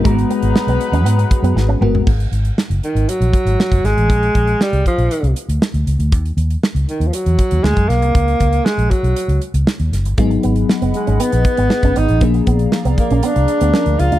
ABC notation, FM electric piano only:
X:1
M:4/4
L:1/8
Q:1/4=118
K:G#m
V:1 name="FM electric piano"
[G,A,B,Fa]6- [G,A,B,Fa] [G,B,FA] | z8 | z8 | z8 |
z8 | [F,B,DG]8 | [^E,A,=DG]6 [E,A,DA]2 |]